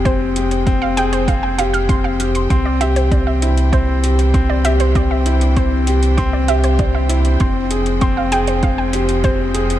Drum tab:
HH |x-xxx-xxx-xxx-xx|x-xxx-xxx-xxx-xx|x-xxx-xxx-xxx-xx|x-xxx-xxx-xxx-xx|
BD |o---o---o---o---|o---o---o---o---|o---o---o---o---|o---o---o---o---|